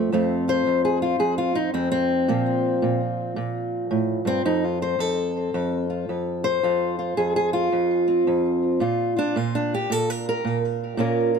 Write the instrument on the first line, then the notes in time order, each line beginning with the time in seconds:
steel-string acoustic guitar
Already playing: F2 A3 C4 F4
0.12 F2 A3 C4 F4
0.48 F4 C5
0.66 F2
0.85 G#4
1.02 F4
1.19 F2 G#4
1.38 F4
1.55 C4 D#4
1.74 F2 C4
1.92 C4
2.28 A#2 F3 A#3
2.82 A#2
3.36 A#2
3.91 A2
4.25 G2 C4
4.45 F2 D#4
4.64 F4
4.82 C5
4.99 F2 A4
5.54 F2
5.90 F4
6.09 F2
6.44 C5
6.63 F2 F4
6.99 F4
7.17 F2 G#4
7.36 G#4
7.53 F4
7.72 F2
8.08 C4
8.27 F2
8.80 A#2 F4
9.16 D4 F4
9.36 A#2 F4
9.55 D4
9.74 G4
9.90 A#2 A4
10.10 A#4
10.29 A#4
10.45 A#2
10.97 A#2 A#3 C#4 F4 A#4
11.35 F4